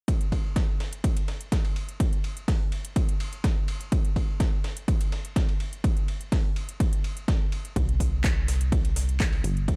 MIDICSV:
0, 0, Header, 1, 3, 480
1, 0, Start_track
1, 0, Tempo, 480000
1, 82, Time_signature, 4, 2, 24, 8
1, 9761, End_track
2, 0, Start_track
2, 0, Title_t, "Analog synth bass"
2, 0, Program_c, 0, 38
2, 7761, Note_on_c, 0, 36, 90
2, 9419, Note_off_c, 0, 36, 0
2, 9442, Note_on_c, 0, 31, 85
2, 9761, Note_off_c, 0, 31, 0
2, 9761, End_track
3, 0, Start_track
3, 0, Title_t, "Drums"
3, 81, Note_on_c, 9, 36, 116
3, 82, Note_on_c, 9, 42, 78
3, 82, Note_on_c, 9, 51, 84
3, 181, Note_off_c, 9, 36, 0
3, 182, Note_off_c, 9, 42, 0
3, 182, Note_off_c, 9, 51, 0
3, 207, Note_on_c, 9, 42, 36
3, 307, Note_off_c, 9, 42, 0
3, 321, Note_on_c, 9, 36, 56
3, 321, Note_on_c, 9, 51, 62
3, 421, Note_off_c, 9, 36, 0
3, 421, Note_off_c, 9, 51, 0
3, 561, Note_on_c, 9, 36, 114
3, 562, Note_on_c, 9, 38, 104
3, 562, Note_on_c, 9, 42, 77
3, 562, Note_on_c, 9, 51, 80
3, 661, Note_off_c, 9, 36, 0
3, 662, Note_off_c, 9, 38, 0
3, 662, Note_off_c, 9, 42, 0
3, 662, Note_off_c, 9, 51, 0
3, 802, Note_on_c, 9, 38, 54
3, 802, Note_on_c, 9, 51, 65
3, 902, Note_off_c, 9, 38, 0
3, 902, Note_off_c, 9, 51, 0
3, 926, Note_on_c, 9, 42, 52
3, 1026, Note_off_c, 9, 42, 0
3, 1040, Note_on_c, 9, 36, 108
3, 1041, Note_on_c, 9, 42, 81
3, 1041, Note_on_c, 9, 51, 86
3, 1140, Note_off_c, 9, 36, 0
3, 1141, Note_off_c, 9, 42, 0
3, 1141, Note_off_c, 9, 51, 0
3, 1166, Note_on_c, 9, 42, 55
3, 1166, Note_on_c, 9, 51, 42
3, 1266, Note_off_c, 9, 42, 0
3, 1266, Note_off_c, 9, 51, 0
3, 1281, Note_on_c, 9, 38, 45
3, 1281, Note_on_c, 9, 51, 64
3, 1381, Note_off_c, 9, 38, 0
3, 1381, Note_off_c, 9, 51, 0
3, 1406, Note_on_c, 9, 42, 35
3, 1506, Note_off_c, 9, 42, 0
3, 1521, Note_on_c, 9, 36, 111
3, 1521, Note_on_c, 9, 38, 110
3, 1521, Note_on_c, 9, 51, 81
3, 1522, Note_on_c, 9, 42, 76
3, 1621, Note_off_c, 9, 36, 0
3, 1621, Note_off_c, 9, 38, 0
3, 1621, Note_off_c, 9, 51, 0
3, 1622, Note_off_c, 9, 42, 0
3, 1647, Note_on_c, 9, 51, 42
3, 1747, Note_off_c, 9, 51, 0
3, 1761, Note_on_c, 9, 51, 64
3, 1861, Note_off_c, 9, 51, 0
3, 1886, Note_on_c, 9, 42, 36
3, 1986, Note_off_c, 9, 42, 0
3, 2000, Note_on_c, 9, 36, 114
3, 2001, Note_on_c, 9, 42, 78
3, 2001, Note_on_c, 9, 51, 84
3, 2101, Note_off_c, 9, 36, 0
3, 2101, Note_off_c, 9, 42, 0
3, 2101, Note_off_c, 9, 51, 0
3, 2127, Note_on_c, 9, 42, 35
3, 2227, Note_off_c, 9, 42, 0
3, 2240, Note_on_c, 9, 51, 64
3, 2340, Note_off_c, 9, 51, 0
3, 2368, Note_on_c, 9, 42, 35
3, 2468, Note_off_c, 9, 42, 0
3, 2481, Note_on_c, 9, 36, 119
3, 2481, Note_on_c, 9, 38, 106
3, 2481, Note_on_c, 9, 46, 75
3, 2482, Note_on_c, 9, 42, 76
3, 2581, Note_off_c, 9, 36, 0
3, 2581, Note_off_c, 9, 38, 0
3, 2581, Note_off_c, 9, 46, 0
3, 2582, Note_off_c, 9, 42, 0
3, 2720, Note_on_c, 9, 51, 69
3, 2820, Note_off_c, 9, 51, 0
3, 2846, Note_on_c, 9, 42, 52
3, 2946, Note_off_c, 9, 42, 0
3, 2961, Note_on_c, 9, 36, 116
3, 2961, Note_on_c, 9, 42, 76
3, 2961, Note_on_c, 9, 51, 88
3, 3061, Note_off_c, 9, 36, 0
3, 3061, Note_off_c, 9, 42, 0
3, 3061, Note_off_c, 9, 51, 0
3, 3087, Note_on_c, 9, 42, 52
3, 3187, Note_off_c, 9, 42, 0
3, 3202, Note_on_c, 9, 51, 63
3, 3302, Note_off_c, 9, 51, 0
3, 3327, Note_on_c, 9, 42, 34
3, 3427, Note_off_c, 9, 42, 0
3, 3441, Note_on_c, 9, 36, 120
3, 3441, Note_on_c, 9, 38, 110
3, 3441, Note_on_c, 9, 51, 82
3, 3442, Note_on_c, 9, 42, 74
3, 3541, Note_off_c, 9, 36, 0
3, 3541, Note_off_c, 9, 38, 0
3, 3541, Note_off_c, 9, 51, 0
3, 3542, Note_off_c, 9, 42, 0
3, 3681, Note_on_c, 9, 51, 63
3, 3781, Note_off_c, 9, 51, 0
3, 3806, Note_on_c, 9, 42, 36
3, 3906, Note_off_c, 9, 42, 0
3, 3920, Note_on_c, 9, 51, 84
3, 3921, Note_on_c, 9, 36, 118
3, 3921, Note_on_c, 9, 42, 74
3, 4021, Note_off_c, 9, 36, 0
3, 4021, Note_off_c, 9, 42, 0
3, 4021, Note_off_c, 9, 51, 0
3, 4046, Note_on_c, 9, 42, 35
3, 4146, Note_off_c, 9, 42, 0
3, 4161, Note_on_c, 9, 36, 62
3, 4162, Note_on_c, 9, 51, 62
3, 4261, Note_off_c, 9, 36, 0
3, 4262, Note_off_c, 9, 51, 0
3, 4401, Note_on_c, 9, 36, 121
3, 4401, Note_on_c, 9, 42, 75
3, 4402, Note_on_c, 9, 38, 108
3, 4402, Note_on_c, 9, 51, 82
3, 4501, Note_off_c, 9, 36, 0
3, 4501, Note_off_c, 9, 42, 0
3, 4502, Note_off_c, 9, 38, 0
3, 4502, Note_off_c, 9, 51, 0
3, 4642, Note_on_c, 9, 38, 59
3, 4642, Note_on_c, 9, 51, 67
3, 4742, Note_off_c, 9, 38, 0
3, 4742, Note_off_c, 9, 51, 0
3, 4767, Note_on_c, 9, 42, 49
3, 4867, Note_off_c, 9, 42, 0
3, 4881, Note_on_c, 9, 36, 120
3, 4881, Note_on_c, 9, 42, 76
3, 4882, Note_on_c, 9, 51, 86
3, 4981, Note_off_c, 9, 36, 0
3, 4981, Note_off_c, 9, 42, 0
3, 4982, Note_off_c, 9, 51, 0
3, 5006, Note_on_c, 9, 42, 51
3, 5008, Note_on_c, 9, 51, 41
3, 5106, Note_off_c, 9, 42, 0
3, 5108, Note_off_c, 9, 51, 0
3, 5123, Note_on_c, 9, 38, 45
3, 5123, Note_on_c, 9, 51, 62
3, 5223, Note_off_c, 9, 38, 0
3, 5223, Note_off_c, 9, 51, 0
3, 5248, Note_on_c, 9, 42, 34
3, 5347, Note_off_c, 9, 42, 0
3, 5361, Note_on_c, 9, 36, 122
3, 5362, Note_on_c, 9, 38, 113
3, 5362, Note_on_c, 9, 42, 72
3, 5362, Note_on_c, 9, 51, 83
3, 5461, Note_off_c, 9, 36, 0
3, 5462, Note_off_c, 9, 38, 0
3, 5462, Note_off_c, 9, 42, 0
3, 5462, Note_off_c, 9, 51, 0
3, 5487, Note_on_c, 9, 51, 43
3, 5587, Note_off_c, 9, 51, 0
3, 5601, Note_on_c, 9, 51, 67
3, 5701, Note_off_c, 9, 51, 0
3, 5728, Note_on_c, 9, 42, 34
3, 5828, Note_off_c, 9, 42, 0
3, 5841, Note_on_c, 9, 36, 122
3, 5842, Note_on_c, 9, 42, 73
3, 5842, Note_on_c, 9, 51, 82
3, 5941, Note_off_c, 9, 36, 0
3, 5942, Note_off_c, 9, 42, 0
3, 5942, Note_off_c, 9, 51, 0
3, 5967, Note_on_c, 9, 42, 33
3, 6067, Note_off_c, 9, 42, 0
3, 6082, Note_on_c, 9, 51, 65
3, 6182, Note_off_c, 9, 51, 0
3, 6207, Note_on_c, 9, 42, 32
3, 6307, Note_off_c, 9, 42, 0
3, 6321, Note_on_c, 9, 36, 120
3, 6322, Note_on_c, 9, 38, 105
3, 6322, Note_on_c, 9, 42, 72
3, 6322, Note_on_c, 9, 46, 72
3, 6421, Note_off_c, 9, 36, 0
3, 6422, Note_off_c, 9, 38, 0
3, 6422, Note_off_c, 9, 42, 0
3, 6422, Note_off_c, 9, 46, 0
3, 6562, Note_on_c, 9, 51, 66
3, 6662, Note_off_c, 9, 51, 0
3, 6687, Note_on_c, 9, 42, 47
3, 6787, Note_off_c, 9, 42, 0
3, 6802, Note_on_c, 9, 36, 117
3, 6802, Note_on_c, 9, 42, 70
3, 6803, Note_on_c, 9, 51, 87
3, 6901, Note_off_c, 9, 36, 0
3, 6902, Note_off_c, 9, 42, 0
3, 6903, Note_off_c, 9, 51, 0
3, 6928, Note_on_c, 9, 42, 50
3, 7028, Note_off_c, 9, 42, 0
3, 7043, Note_on_c, 9, 51, 67
3, 7143, Note_off_c, 9, 51, 0
3, 7168, Note_on_c, 9, 42, 33
3, 7268, Note_off_c, 9, 42, 0
3, 7282, Note_on_c, 9, 36, 120
3, 7282, Note_on_c, 9, 38, 110
3, 7282, Note_on_c, 9, 51, 83
3, 7283, Note_on_c, 9, 42, 68
3, 7382, Note_off_c, 9, 36, 0
3, 7382, Note_off_c, 9, 38, 0
3, 7382, Note_off_c, 9, 51, 0
3, 7383, Note_off_c, 9, 42, 0
3, 7522, Note_on_c, 9, 51, 65
3, 7622, Note_off_c, 9, 51, 0
3, 7649, Note_on_c, 9, 42, 35
3, 7749, Note_off_c, 9, 42, 0
3, 7761, Note_on_c, 9, 36, 111
3, 7762, Note_on_c, 9, 51, 85
3, 7763, Note_on_c, 9, 42, 74
3, 7861, Note_off_c, 9, 36, 0
3, 7862, Note_off_c, 9, 51, 0
3, 7863, Note_off_c, 9, 42, 0
3, 7888, Note_on_c, 9, 42, 34
3, 7988, Note_off_c, 9, 42, 0
3, 8001, Note_on_c, 9, 36, 58
3, 8002, Note_on_c, 9, 51, 68
3, 8003, Note_on_c, 9, 46, 101
3, 8102, Note_off_c, 9, 36, 0
3, 8102, Note_off_c, 9, 51, 0
3, 8103, Note_off_c, 9, 46, 0
3, 8242, Note_on_c, 9, 36, 118
3, 8242, Note_on_c, 9, 38, 104
3, 8242, Note_on_c, 9, 39, 112
3, 8242, Note_on_c, 9, 51, 82
3, 8243, Note_on_c, 9, 42, 76
3, 8342, Note_off_c, 9, 36, 0
3, 8342, Note_off_c, 9, 38, 0
3, 8342, Note_off_c, 9, 39, 0
3, 8342, Note_off_c, 9, 51, 0
3, 8343, Note_off_c, 9, 42, 0
3, 8483, Note_on_c, 9, 38, 57
3, 8483, Note_on_c, 9, 46, 104
3, 8483, Note_on_c, 9, 51, 69
3, 8583, Note_off_c, 9, 38, 0
3, 8583, Note_off_c, 9, 46, 0
3, 8583, Note_off_c, 9, 51, 0
3, 8608, Note_on_c, 9, 42, 47
3, 8708, Note_off_c, 9, 42, 0
3, 8722, Note_on_c, 9, 36, 118
3, 8722, Note_on_c, 9, 51, 90
3, 8723, Note_on_c, 9, 42, 72
3, 8822, Note_off_c, 9, 36, 0
3, 8822, Note_off_c, 9, 51, 0
3, 8823, Note_off_c, 9, 42, 0
3, 8847, Note_on_c, 9, 51, 41
3, 8848, Note_on_c, 9, 42, 50
3, 8947, Note_off_c, 9, 51, 0
3, 8948, Note_off_c, 9, 42, 0
3, 8962, Note_on_c, 9, 38, 45
3, 8962, Note_on_c, 9, 46, 99
3, 8962, Note_on_c, 9, 51, 64
3, 9062, Note_off_c, 9, 38, 0
3, 9062, Note_off_c, 9, 46, 0
3, 9062, Note_off_c, 9, 51, 0
3, 9088, Note_on_c, 9, 42, 35
3, 9188, Note_off_c, 9, 42, 0
3, 9202, Note_on_c, 9, 36, 116
3, 9202, Note_on_c, 9, 38, 111
3, 9202, Note_on_c, 9, 39, 107
3, 9202, Note_on_c, 9, 51, 85
3, 9203, Note_on_c, 9, 42, 71
3, 9301, Note_off_c, 9, 36, 0
3, 9302, Note_off_c, 9, 38, 0
3, 9302, Note_off_c, 9, 39, 0
3, 9302, Note_off_c, 9, 51, 0
3, 9303, Note_off_c, 9, 42, 0
3, 9326, Note_on_c, 9, 51, 43
3, 9426, Note_off_c, 9, 51, 0
3, 9441, Note_on_c, 9, 51, 66
3, 9444, Note_on_c, 9, 46, 97
3, 9541, Note_off_c, 9, 51, 0
3, 9544, Note_off_c, 9, 46, 0
3, 9568, Note_on_c, 9, 42, 33
3, 9668, Note_off_c, 9, 42, 0
3, 9681, Note_on_c, 9, 36, 115
3, 9681, Note_on_c, 9, 51, 84
3, 9683, Note_on_c, 9, 42, 77
3, 9761, Note_off_c, 9, 36, 0
3, 9761, Note_off_c, 9, 42, 0
3, 9761, Note_off_c, 9, 51, 0
3, 9761, End_track
0, 0, End_of_file